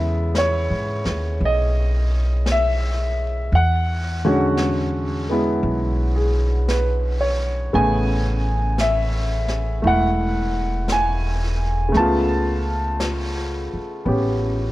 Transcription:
Already playing: upright bass E2, grand piano C#3 G#3 B3 E4 A4 E5
0.35 grand piano C#5, brush sweep, snare, hi-hat pedal
0.70 upright bass G#2
1.05 upright bass D#2, snare
1.40 upright bass B1, brush sweep
1.45 grand piano D#5
2.46 brush sweep, snare, hi-hat pedal
2.52 grand piano E5
3.52 upright bass E2, grand piano F#5, brush sweep
4.25 grand piano D3 G#3 C#4 F#4
4.57 brush sweep, snare, hi-hat pedal
5.29 grand piano G#3 B3 E4
5.63 upright bass B1, brush sweep
6.16 grand piano G#4
6.68 grand piano B4, brush sweep, snare, hi-hat pedal
7.21 grand piano C#5
7.73 upright bass A1, grand piano C#3 A3 B3 G#4 G#5, brush sweep
8.78 grand piano E5, brush sweep, snare, hi-hat pedal
9.48 snare
9.82 upright bass E1, grand piano A3 E4, brush sweep
9.87 grand piano F#5
10.88 brush sweep, snare, hi-hat pedal
10.92 grand piano G#5
11.88 grand piano C#3 A3
11.94 upright bass C#2, grand piano B3 A5, brush sweep, snare
11.99 grand piano F4
13.00 brush sweep, snare, hi-hat pedal
13.74 muted upright bass stroke
14.05 upright bass A1, grand piano B3 C#4 G4, brush sweep

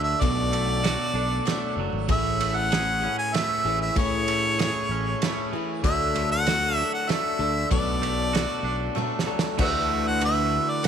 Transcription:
Already playing: fingered electric bass D2, clean electric guitar D3 A3 D4 F#4, steel-string acoustic guitar F#3 A3 D4 A4
0.03 harmonica E5
0.20 fingered electric bass B1, steel-string acoustic guitar B2 F#3 A3 D4 A4, clean electric guitar B2, harmonica D5, kick, ride
0.52 clean electric guitar A3, ride
0.84 steel-string acoustic guitar F#3 A3 D4 A4, clean electric guitar F#4, snare, ride
1.14 fingered electric bass B1, clean electric guitar D4, steel-string acoustic guitar D4 A4
1.18 steel-string acoustic guitar A3
1.45 steel-string acoustic guitar F#3 A3 D4 A4, clean electric guitar A3, snare, ride
1.76 fingered electric bass F#1, clean electric guitar F#3
1.93 fingered electric bass G#1
2.08 fingered electric bass A1, clean electric guitar A2, steel-string acoustic guitar A3 C#4 E4 G#4, harmonica E5, kick, ride
2.40 clean electric guitar A3, ride
2.56 harmonica F#5
2.71 steel-string acoustic guitar A3 C#4 E4 G#4, clean electric guitar G#4, snare, ride
3.02 clean electric guitar C#4, steel-string acoustic guitar C#4 E4 G#4
3.18 harmonica G#5
3.34 steel-string acoustic guitar A3 C#4 E4 G#4, clean electric guitar A3, harmonica E5, snare, ride
3.65 fingered electric bass A1, clean electric guitar E3, steel-string acoustic guitar C#4 E4 G#4
3.81 harmonica E5
3.96 fingered electric bass A2, clean electric guitar A2, steel-string acoustic guitar A3 C#4 E4 G#4, harmonica C#5, kick, ride
4.28 clean electric guitar A3, ride
4.59 steel-string acoustic guitar A3 C#4 E4 G#4, clean electric guitar G#4, snare, ride
4.89 fingered electric bass A1, clean electric guitar C#4
5.22 clean electric guitar A3, steel-string acoustic guitar A3 C#4 E4 G#4, snare, ride
5.53 clean electric guitar E3, steel-string acoustic guitar C#4 E4 G#4
5.83 fingered electric bass D2, steel-string acoustic guitar D3 F#3 A3 D4 A4, clean electric guitar D3, harmonica E5, kick, ride
6.15 clean electric guitar A3, ride
6.32 harmonica F#5
6.45 steel-string acoustic guitar F#3 A3 D4 A4, clean electric guitar F#4, snare, ride
6.76 clean electric guitar D4, harmonica E5
6.93 harmonica F#5
7.07 steel-string acoustic guitar F#3 A3 D4 A4, clean electric guitar A3, harmonica E5, snare, ride
7.39 fingered electric bass D2, clean electric guitar D3, steel-string acoustic guitar A3 D4 A4
7.71 fingered electric bass B1, steel-string acoustic guitar B2 F#3 A3 D4 A4, clean electric guitar B2, harmonica D5, kick, ride
8.02 clean electric guitar A3, ride
8.33 steel-string acoustic guitar F#3 A3 D4 A4, clean electric guitar F#4, snare, ride
8.63 fingered electric bass B1, clean electric guitar D4
8.95 steel-string acoustic guitar F#3 A3 D4 A4, clean electric guitar A3, high tom
9.19 snare
9.27 clean electric guitar F#3, steel-string acoustic guitar A3 D4 A4
9.39 snare
9.58 fingered electric bass D2, clean electric guitar D3 E3 A3 D4 F#4, steel-string acoustic guitar D3 E3 A3 E4 F#4, kick, crash
9.62 harmonica E5
10.07 harmonica F#5
10.21 steel-string acoustic guitar E3 A3 E4 F#4, ride
10.25 harmonica E5
10.70 harmonica D5
10.83 steel-string acoustic guitar E3 A3 E4, ride

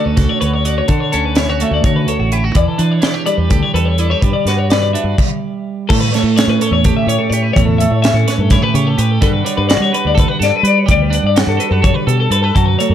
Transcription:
Already playing: clean electric guitar D3 A3 C#4 F#4
0.05 fingered electric bass D2, clean electric guitar B4
0.16 fingered electric bass C#2, clean electric guitar F#4 A4, kick, snare, closed hi-hat
0.29 clean electric guitar C#5
0.40 fingered electric bass D2, clean electric guitar B4 C#5, closed hi-hat
0.53 clean electric guitar C#5
0.65 clean electric guitar F#4 D5, closed hi-hat
0.78 clean electric guitar C#5
0.88 clean electric guitar D3 A4, fingered electric bass D3, kick, closed hi-hat
1.00 clean electric guitar C#5
1.12 fingered electric bass D2, clean electric guitar C#4 A4, closed hi-hat
1.25 clean electric guitar B4
1.35 clean electric guitar E4 C#5, snare, closed hi-hat
1.49 clean electric guitar F#4 C#5
1.60 clean electric guitar A3 E5, closed hi-hat
1.71 fingered electric bass D2, clean electric guitar D5
1.84 fingered electric bass D3, clean electric guitar F#4 C#5, kick, closed hi-hat
1.96 clean electric guitar B4
2.06 fingered electric bass D2, clean electric guitar A4 C#5, closed hi-hat
2.19 fingered electric bass A1, clean electric guitar F#4
2.32 clean electric guitar E4 G4, closed hi-hat
2.44 clean electric guitar F#4
2.54 fingered electric bass E2, clean electric guitar E3 D5, kick, closed hi-hat
2.68 clean electric guitar A4
2.78 fingered electric bass E3, clean electric guitar D4 B4, closed hi-hat
2.91 clean electric guitar C#5
3.02 clean electric guitar E4 D5, snare, closed hi-hat
3.14 clean electric guitar G4 C#5
3.26 clean electric guitar G3 D5, closed hi-hat
3.37 fingered electric bass E2, clean electric guitar B4
3.50 fingered electric bass D2, clean electric guitar G4 A4, kick, closed hi-hat
3.63 clean electric guitar C#5
3.74 fingered electric bass E2, clean electric guitar A4 B4, closed hi-hat
3.85 clean electric guitar C#5
3.98 clean electric guitar E4 D5, closed hi-hat
4.10 clean electric guitar G4 C#5
4.21 fingered electric bass G2, clean electric guitar G3 B4, kick, closed hi-hat
4.33 clean electric guitar D5
4.45 fingered electric bass G2, clean electric guitar F#4 B4, snare, closed hi-hat
4.59 clean electric guitar C#5
4.70 clean electric guitar B4 D5, snare, closed hi-hat
4.82 clean electric guitar D5
4.93 clean electric guitar D4 E5, closed hi-hat
5.04 fingered electric bass G2, clean electric guitar D5
5.18 kick, crash
5.89 fingered electric bass A2, clean electric guitar A2 A4, kick, crash
6.00 clean electric guitar B4
6.12 clean electric guitar A3 C#5, snare, closed hi-hat
6.23 fingered electric bass A2, clean electric guitar A4
6.36 clean electric guitar C#4 C#5, snare, closed hi-hat
6.48 fingered electric bass A2, clean electric guitar B4
6.61 clean electric guitar A4 C#5, closed hi-hat
6.71 fingered electric bass E2, clean electric guitar C#5
6.84 clean electric guitar G4 A4, kick, closed hi-hat
6.97 clean electric guitar E5
7.07 fingered electric bass A2, clean electric guitar C#5, closed hi-hat
7.19 clean electric guitar A4
7.30 fingered electric bass A2, clean electric guitar G4 C#5, closed hi-hat
7.43 clean electric guitar B4
7.53 fingered electric bass E2, clean electric guitar A2 C#5, kick, closed hi-hat
7.65 clean electric guitar A4
7.78 clean electric guitar A3 E5, closed hi-hat
7.91 fingered electric bass A2, clean electric guitar C#5
8.02 clean electric guitar C#4 E5, snare, closed hi-hat
8.14 fingered electric bass A2, clean electric guitar A4
8.27 clean electric guitar B4 C#5, snare, closed hi-hat
8.38 fingered electric bass G2, clean electric guitar A4
8.50 clean electric guitar E4 C#5, kick, snare, closed hi-hat
8.62 clean electric guitar G4 B4
8.74 fingered electric bass C#3, clean electric guitar G4 C#5, closed hi-hat
8.87 clean electric guitar A4
8.98 fingered electric bass A2, clean electric guitar G4 B4, closed hi-hat
9.11 clean electric guitar A4
9.21 fingered electric bass G2, clean electric guitar G3 D4 F#4 A4 B4, kick, closed hi-hat
9.33 clean electric guitar B4
9.45 clean electric guitar D4 C#5, closed hi-hat
9.57 fingered electric bass G2, clean electric guitar B4
9.69 clean electric guitar F#4 D5, snare, closed hi-hat
9.80 fingered electric bass G3, clean electric guitar C#5
9.93 clean electric guitar B4, closed hi-hat
10.05 fingered electric bass D2, clean electric guitar D5
10.15 clean electric guitar A4, kick, closed hi-hat
10.19 clean electric guitar B4
10.28 clean electric guitar B4 F#5
10.40 fingered electric bass G2, clean electric guitar A4 D5, snare, closed hi-hat
10.56 clean electric guitar B4
10.63 fingered electric bass G3, clean electric guitar B4, closed hi-hat
10.68 clean electric guitar D5
10.79 clean electric guitar C#5
10.86 fingered electric bass D2, clean electric guitar G3, kick, closed hi-hat
10.91 clean electric guitar D5
11.02 clean electric guitar B4
11.10 clean electric guitar D4, closed hi-hat
11.15 clean electric guitar F#5
11.23 fingered electric bass G2, clean electric guitar D5
11.36 clean electric guitar F#4 F#5, snare, closed hi-hat
11.47 fingered electric bass G2, clean electric guitar A4
11.57 clean electric guitar A4 B4, closed hi-hat
11.71 fingered electric bass F#2, clean electric guitar A4 B4
11.82 clean electric guitar A4 C#5, kick, closed hi-hat
11.94 clean electric guitar B4
12.07 fingered electric bass B2, clean electric guitar G4 A4, closed hi-hat
12.20 clean electric guitar A4
12.30 fingered electric bass G2, clean electric guitar A4 B4, closed hi-hat
12.43 clean electric guitar A4 B4
12.55 fingered electric bass F#2, clean electric guitar F#3 A4, kick, closed hi-hat
12.66 clean electric guitar B4
12.79 clean electric guitar A3 C#5, closed hi-hat
12.89 fingered electric bass F#2, clean electric guitar A4

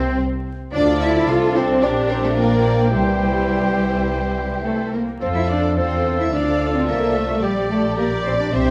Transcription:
Already playing: double bass section C2, bassoon C3, timpani C3, oboe C4, viola section C4, flute C4, cello section C4, violin section C4 C5, french horn section C4
0.73 double bass section D2, bassoon F3, cello section D4, french horn section D4, viola section F4 A4, oboe D5, violin section D5, flute A5
1.00 cello section E4, french horn section E4, violin section E5
1.27 double bass section C2, viola section D4, cello section F4, french horn section F4, violin section A4 F5
1.55 cello section C4, french horn section C4, violin section C5
1.82 double bass section A#1, cello section D4, french horn section D4, viola section G4, violin section A#4 D5, flute G5
2.09 cello section C4, french horn section C4, violin section C5
2.23 cello section A3, french horn section A3, violin section A4
2.37 cello section A#3, french horn section A#3, viola section F4, violin section A#4 D5
2.92 double bass section C2, bassoon E3, french horn section G3, cello section G3, viola section E4, violin section G4 C5, oboe C5
4.61 french horn section A3, cello section A3, violin section A4
4.93 french horn section A#3, cello section A#3, violin section A#4
5.20 double bass section F2, bassoon F3, cello section C4, french horn section C4, viola section F4 A4, oboe A4, violin section C5, flute F5
5.34 cello section E4, french horn section E4, violin section E5
5.49 cello section D4, french horn section D4, violin section D5
5.76 double bass section E2, bassoon F3, cello section C4, french horn section C4, viola section F4 A4, oboe A4, violin section C5, flute F5
6.19 cello section E4, french horn section E4, violin section E5
6.32 double bass section D2, bassoon F3, cello section D4, french horn section D4, viola section F4 A4, oboe A4, violin section D5 F5, flute D5
6.73 cello section C4, french horn section C4, violin section C5
6.87 double bass section C2, cello section A#3, french horn section A#3, violin section A#4 E5
7.15 cello section A3, french horn section A3, violin section A4
7.42 double bass section A#1, cello section G3, bassoon G3, french horn section G3, violin section G4 D5, viola section G4 D5, oboe G4, flute D5
7.70 cello section A3, french horn section A3, violin section A4
7.96 bassoon G3, french horn section A#3, cello section A#3, oboe G4, viola section G4 D5, violin section A#4 D5, flute D5
8.24 cello section C4, french horn section C4, violin section C5
8.38 cello section D4, french horn section D4, violin section D5
8.51 double bass section C2, bassoon G3, french horn section C4, cello section C4, viola section G4 C5, oboe G4, violin section C5 E5, flute E5

